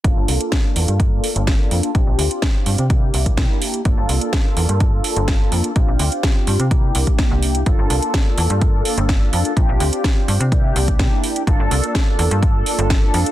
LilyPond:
<<
  \new Staff \with { instrumentName = "Analog polysynth" } { \time 4/4 \key g \dorian \tempo 4 = 126 <bes d' f' a'>1 | <d' g'>2 g'2 | <bes d' f' a'>1 | <c' f' g'>2 <bes d' e' g'>2 |
<bes f' a'>1 | <f' g'>2 <bes d' e' g'>2 | <bes d' f' a'>1 | }
  \new Staff \with { instrumentName = "FM bass" } { \clef bass \time 4/4 \key g \dorian g,,16 g,,16 c,16 r8. e,16 g,8. r16 g,,8. f,16 r16 | bes,,16 bes,,16 d,16 r8. g,16 c8. c,8 c16 r8. | g,,16 g,,16 c,16 r8. e,16 g,8. r16 g,,8. f,16 r16 | bes,,16 bes,,16 d,16 r8. g,16 c8. c,16 r8 c,8. |
g,,16 g,,16 c,16 r8. e,16 g,8. r16 g,,8. f,16 r16 | bes,,16 bes,,16 d,16 r8. g,16 c8. c,8 c16 r8. | g,,16 g,,16 c,16 r8. e,16 g,8. r16 g,,8. f,16 r16 | }
  \new DrumStaff \with { instrumentName = "Drums" } \drummode { \time 4/4 <hh bd>8 hho16 hh16 <hh bd sn>8 hho16 hh16 <hh bd>8 hho16 hh16 <hh bd sn>8 hho16 hh16 | <hh bd>8 hho16 hh16 <hh bd sn>8 hho16 hh16 <hh bd>8 hho16 <hh bd>16 <hh bd sn>8 hho16 hh16 | <hh bd>8 hho16 hh16 <hh bd sn>8 hho16 hh16 <hh bd>8 hho16 hh16 <hh bd sn>8 hho16 hh16 | <hh bd>8 hho16 hh16 <hh bd sn>8 hho16 hh16 <hh bd>8 hho16 <hh bd>16 <hh bd sn>8 hho16 hh16 |
<hh bd>8 hho16 hh16 <hh bd sn>8 hho16 hh16 <hh bd>8 hho16 hh16 <hh bd sn>8 hho16 hh16 | <hh bd>8 hho16 hh16 <hh bd sn>8 hho16 hh16 <hh bd>8 hho16 <hh bd>16 <hh bd sn>8 hho16 hh16 | <hh bd>8 hho16 hh16 <hh bd sn>8 hho16 hh16 <hh bd>8 hho16 hh16 <hh bd sn>8 hho16 hh16 | }
>>